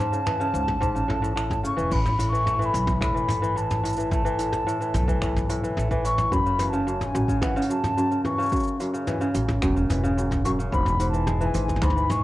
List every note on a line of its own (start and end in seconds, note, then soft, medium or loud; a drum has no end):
0.00 0.18 G#2 medium
0.00 1.64 A5 loud
0.00 cabasa medium
0.12 0.39 C#3 medium
0.12 cabasa soft
0.26 0.45 E3 medium
0.26 finger snap medium
0.26 mid tom medium
0.26 cabasa medium
0.40 0.59 C#3 loud
0.40 cabasa soft
0.53 0.76 C#2 loud
0.53 0.79 G#2 medium
0.53 cabasa medium
0.68 kick medium
0.68 mid tom medium
0.80 1.46 A1 loud
0.80 1.00 G#2 loud
0.80 kick loud
0.80 cabasa medium
0.95 1.14 C#3 medium
0.95 cabasa soft
1.08 1.21 A2 loud
1.08 mid tom medium
1.22 1.34 A2 loud
1.22 cabasa soft
1.36 1.69 A2 medium
1.36 finger snap loud
1.36 cabasa medium
1.50 kick medium
1.50 mid tom medium
1.50 cabasa soft
1.63 1.97 C#3 medium
1.63 1.94 C#6 loud
1.63 cabasa medium
1.76 1.89 E1 medium
1.76 1.97 E3 loud
1.76 cabasa soft
1.91 2.70 A1 medium
1.91 2.17 A2 medium
1.91 2.30 B5 loud
1.91 kick loud
1.91 crash loud
1.91 cabasa medium
2.06 mid tom medium
2.06 cabasa soft
2.19 2.72 A2 loud
2.19 closed hi-hat medium
2.19 cabasa medium
2.29 2.58 E3 medium
2.29 2.67 C#6 loud
2.35 cabasa soft
2.46 3.28 A3 medium
2.46 mid tom medium
2.46 cabasa soft
2.59 3.13 E3 loud
2.59 cabasa soft
2.65 3.01 B5 medium
2.73 2.97 B1 loud
2.73 3.00 A2 medium
2.73 closed hi-hat medium
2.73 cabasa medium
2.87 kick medium
2.87 mid tom medium
2.87 cabasa soft
3.01 3.24 E1 medium
3.01 3.55 A2 loud
3.01 3.58 B5 loud
3.01 finger snap medium
3.01 kick loud
3.01 cabasa medium
3.14 3.41 E3 medium
3.14 cabasa soft
3.28 4.63 A1 medium
3.28 4.11 A3 medium
3.28 closed hi-hat loud
3.28 mid tom medium
3.28 cabasa medium
3.42 3.96 E3 medium
3.42 cabasa medium
3.56 3.82 A2 medium
3.56 4.12 A5 medium
3.56 cabasa medium
3.71 mid tom medium
3.71 cabasa soft
3.84 4.38 A2 medium
3.84 closed hi-hat loud
3.84 cabasa medium
3.89 cabasa medium
3.93 cabasa medium
3.96 4.24 E3 medium
3.96 cabasa soft
4.00 cabasa soft
4.11 4.94 A3 medium
4.11 5.18 A5 medium
4.11 kick loud
4.11 mid tom medium
4.11 cabasa medium
4.25 4.79 E3 loud
4.25 cabasa soft
4.39 4.66 A2 medium
4.39 closed hi-hat loud
4.39 cabasa medium
4.53 mid tom medium
4.53 cabasa soft
4.67 5.21 A2 loud
4.67 cabasa medium
4.81 5.07 E3 medium
4.81 cabasa soft
4.94 5.17 B1 loud
4.94 5.76 A3 medium
4.94 closed hi-hat medium
4.94 mid tom medium
4.94 cabasa medium
5.08 5.62 E3 loud
5.08 kick medium
5.08 cabasa medium
5.22 5.73 B1 medium
5.22 5.48 A2 medium
5.22 finger snap medium
5.22 kick loud
5.22 cabasa medium
5.36 mid tom medium
5.36 cabasa soft
5.49 6.03 A2 loud
5.49 closed hi-hat loud
5.49 cabasa medium
5.63 5.89 E3 medium
5.63 cabasa soft
5.76 6.28 A1 medium
5.76 7.76 A3 medium
5.76 mid tom medium
5.76 cabasa medium
5.91 6.37 E3 loud
5.91 kick medium
5.91 cabasa soft
6.04 6.37 A2 medium
6.04 6.34 C#6 loud
6.04 closed hi-hat medium
6.04 cabasa medium
6.18 mid tom medium
6.18 cabasa soft
6.32 7.11 F#1 medium
6.32 6.86 F#2 loud
6.32 6.71 B5 loud
6.32 kick loud
6.32 cabasa medium
6.46 6.72 C#3 medium
6.46 cabasa soft
6.59 6.78 E3 medium
6.59 closed hi-hat medium
6.59 mid tom medium
6.59 cabasa medium
6.69 7.27 C#3 medium
6.69 7.07 A5 loud
6.69 cabasa soft
6.87 7.13 F#2 medium
6.87 cabasa medium
7.01 mid tom medium
7.01 cabasa soft
7.05 7.44 G#5 medium
7.15 7.37 A1 loud
7.15 7.68 F#2 medium
7.15 cabasa medium
7.28 7.55 C#3 medium
7.28 kick medium
7.28 cabasa medium
7.42 7.61 E3 medium
7.42 7.70 F#5 medium
7.42 finger snap medium
7.42 kick loud
7.42 mid tom medium
7.42 cabasa medium
7.56 8.10 C#3 loud
7.56 cabasa soft
7.62 closed hi-hat medium
7.70 7.96 F#2 medium
7.70 8.21 A5 medium
7.70 cabasa medium
7.84 mid tom medium
7.84 cabasa soft
7.98 8.51 F#2 medium
7.98 cabasa medium
8.11 8.37 C#3 medium
8.11 cabasa soft
8.25 8.43 E3 medium
8.25 8.76 C#6 loud
8.25 mid tom medium
8.25 cabasa medium
8.38 8.92 C#3 loud
8.38 cabasa soft
8.42 cabasa soft
8.46 cabasa soft
8.49 8.79 F#2 medium
8.49 kick loud
8.49 cabasa soft
8.52 cabasa medium
8.56 cabasa soft
8.60 cabasa soft
8.63 cabasa soft
8.67 cabasa soft
8.80 9.33 F#2 loud
8.80 closed hi-hat medium
8.80 cabasa medium
8.93 9.19 C#3 medium
8.93 cabasa soft
9.07 9.26 E3 medium
9.07 mid tom medium
9.07 cabasa medium
9.21 9.75 C#3 loud
9.21 cabasa soft
9.34 9.57 A1 loud
9.34 9.61 F#2 medium
9.34 closed hi-hat loud
9.34 cabasa medium
9.48 kick medium
9.48 mid tom medium
9.48 cabasa soft
9.62 9.85 E1 loud
9.62 10.16 F#2 loud
9.62 finger snap medium
9.62 kick loud
9.62 cabasa medium
9.76 10.02 C#3 medium
9.76 cabasa soft
9.90 10.68 E1 medium
9.90 10.08 E3 medium
9.90 closed hi-hat medium
9.90 mid tom medium
9.90 cabasa medium
10.04 10.58 C#3 loud
10.04 cabasa soft
10.17 10.44 F#2 medium
10.17 cabasa medium
10.31 kick medium
10.31 mid tom medium
10.31 cabasa soft
10.45 10.77 F#2 medium
10.45 10.51 C#6 loud
10.45 closed hi-hat medium
10.45 cabasa medium
10.59 10.77 C#3 medium
10.59 cabasa soft
10.72 11.51 E1 loud
10.72 10.99 G#2 medium
10.72 11.06 B5 loud
10.72 kick loud
10.72 cabasa medium
10.86 mid tom medium
10.86 cabasa soft
11.00 11.53 G#2 medium
11.00 closed hi-hat medium
11.00 cabasa medium
11.09 11.40 E3 medium
11.09 11.47 A5 loud
11.14 cabasa soft
11.27 12.09 G#3 medium
11.27 mid tom medium
11.27 cabasa medium
11.41 11.95 E3 medium
11.41 cabasa soft
11.46 11.84 G#5 medium
11.54 11.77 G#1 loud
11.54 11.81 G#2 medium
11.54 closed hi-hat loud
11.54 cabasa medium
11.69 kick medium
11.69 mid tom soft
11.69 cabasa soft
11.76 mid tom soft
11.82 12.05 D2 medium
11.82 12.24 G#2 loud
11.82 12.12 B5 loud
11.82 finger snap medium
11.82 kick loud
11.82 mid tom medium
11.82 cabasa medium
11.90 mid tom medium
11.96 12.22 E3 medium
11.96 cabasa soft
12.10 12.24 E1 medium
12.10 12.24 G#3 medium
12.10 12.24 C#6 loud
12.10 closed hi-hat medium
12.10 mid tom medium
12.10 cabasa medium